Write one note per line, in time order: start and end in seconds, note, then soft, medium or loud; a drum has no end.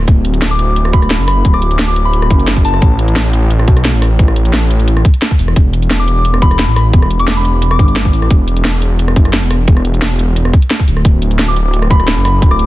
0.08 1.01 D1 loud
0.08 kick loud
0.08 closed hi-hat medium
0.25 closed hi-hat medium
0.34 closed hi-hat soft
0.42 snare loud
0.42 closed hi-hat medium
0.51 0.71 D6 medium
0.59 closed hi-hat medium
0.76 closed hi-hat medium
0.85 cross-stick medium
0.93 1.14 B5 medium
0.93 kick loud
0.93 closed hi-hat medium
1.02 1.18 D1 loud
1.02 cross-stick medium
1.02 closed hi-hat soft
1.10 snare loud
1.10 closed hi-hat medium
1.19 1.44 F#1 medium
1.28 1.54 B5 medium
1.28 cross-stick medium
1.28 open hi-hat medium
1.45 2.29 D1 loud
1.45 kick loud
1.45 closed hi-hat medium
1.54 1.79 D6 medium
1.54 cross-stick medium
1.62 closed hi-hat medium
1.71 closed hi-hat soft
1.79 snare loud
1.79 closed hi-hat medium
1.88 2.03 D6 medium
1.96 closed hi-hat medium
2.05 2.26 B5 medium
2.13 closed hi-hat medium
2.22 cross-stick medium
2.31 2.64 F#1 loud
2.31 kick loud
2.31 closed hi-hat medium
2.39 closed hi-hat soft
2.48 snare loud
2.48 closed hi-hat medium
2.57 kick medium
2.57 closed hi-hat soft
2.65 2.80 F#1 loud
2.65 2.86 A5 medium
2.65 open hi-hat medium
2.74 cross-stick soft
2.82 3.66 A1 loud
2.82 kick loud
2.82 closed hi-hat loud
2.99 closed hi-hat medium
3.08 closed hi-hat soft
3.16 snare loud
3.16 closed hi-hat loud
3.33 closed hi-hat medium
3.50 closed hi-hat loud
3.59 cross-stick medium
3.68 3.92 B1 medium
3.68 kick medium
3.68 closed hi-hat medium
3.77 cross-stick medium
3.77 closed hi-hat soft
3.85 snare loud
3.85 closed hi-hat medium
3.94 4.18 A1 medium
4.02 cross-stick medium
4.02 open hi-hat medium
4.19 5.04 A1 loud
4.19 kick loud
4.19 closed hi-hat loud
4.28 cross-stick medium
4.36 closed hi-hat medium
4.45 closed hi-hat soft
4.53 snare loud
4.53 closed hi-hat loud
4.71 closed hi-hat medium
4.80 closed hi-hat soft
4.88 closed hi-hat loud
4.97 cross-stick medium
5.05 kick loud
5.05 closed hi-hat medium
5.14 closed hi-hat soft
5.22 snare loud
5.22 closed hi-hat loud
5.31 kick medium
5.31 closed hi-hat soft
5.39 5.55 E1 medium
5.39 open hi-hat medium
5.48 cross-stick soft
5.56 6.50 E1 loud
5.56 kick loud
5.56 closed hi-hat loud
5.73 closed hi-hat medium
5.82 closed hi-hat soft
5.91 snare loud
5.91 closed hi-hat loud
6.00 6.20 D6 medium
6.08 closed hi-hat medium
6.25 closed hi-hat loud
6.34 cross-stick medium
6.42 6.63 B5 medium
6.42 kick loud
6.42 closed hi-hat medium
6.51 6.66 E1 loud
6.51 cross-stick medium
6.51 closed hi-hat soft
6.59 snare loud
6.59 closed hi-hat loud
6.68 6.92 A1 medium
6.76 7.02 B5 medium
6.76 cross-stick medium
6.76 open hi-hat medium
6.93 7.78 E1 loud
6.93 kick loud
6.93 closed hi-hat medium
7.02 cross-stick medium
7.11 closed hi-hat medium
7.20 7.35 D6 medium
7.20 closed hi-hat soft
7.28 snare loud
7.28 closed hi-hat medium
7.37 7.57 B5 medium
7.45 closed hi-hat medium
7.62 closed hi-hat medium
7.71 8.19 D6 medium
7.71 cross-stick medium
7.79 8.12 G1 loud
7.79 kick loud
7.79 closed hi-hat medium
7.88 closed hi-hat soft
7.96 snare loud
7.96 closed hi-hat loud
8.05 kick medium
8.05 closed hi-hat soft
8.13 8.29 A1 loud
8.13 open hi-hat medium
8.22 cross-stick soft
8.30 9.15 E1 loud
8.30 kick loud
8.30 closed hi-hat medium
8.48 closed hi-hat medium
8.57 closed hi-hat soft
8.65 snare loud
8.65 closed hi-hat medium
8.82 closed hi-hat medium
8.99 closed hi-hat medium
9.08 cross-stick medium
9.16 9.41 F#1 medium
9.16 kick loud
9.16 closed hi-hat medium
9.25 cross-stick medium
9.25 closed hi-hat soft
9.33 snare loud
9.33 closed hi-hat medium
9.42 9.66 E1 medium
9.51 cross-stick medium
9.51 open hi-hat medium
9.68 10.52 E1 loud
9.68 kick loud
9.68 closed hi-hat medium
9.77 cross-stick medium
9.85 closed hi-hat medium
9.94 closed hi-hat soft
10.02 snare loud
10.02 closed hi-hat medium
10.19 closed hi-hat medium
10.36 closed hi-hat medium
10.45 cross-stick medium
10.53 kick loud
10.53 closed hi-hat medium
10.62 closed hi-hat soft
10.71 snare loud
10.71 closed hi-hat medium
10.80 kick medium
10.80 closed hi-hat soft
10.88 11.03 D1 medium
10.88 open hi-hat medium
10.97 cross-stick soft
11.05 11.98 D1 loud
11.05 kick loud
11.05 closed hi-hat medium
11.22 closed hi-hat medium
11.31 closed hi-hat soft
11.39 snare loud
11.39 closed hi-hat medium
11.48 11.69 D6 medium
11.56 closed hi-hat medium
11.73 closed hi-hat medium
11.82 cross-stick medium
11.91 12.11 B5 loud
11.91 kick loud
11.91 closed hi-hat medium
12.00 12.15 D1 loud
12.00 cross-stick medium
12.00 closed hi-hat soft
12.08 snare loud
12.08 closed hi-hat medium
12.17 12.41 F#1 medium
12.25 12.51 B5 medium
12.25 cross-stick medium
12.25 open hi-hat medium
12.42 12.66 D1 loud
12.42 kick loud
12.42 closed hi-hat medium
12.51 12.66 D6 medium
12.51 cross-stick medium
12.59 closed hi-hat medium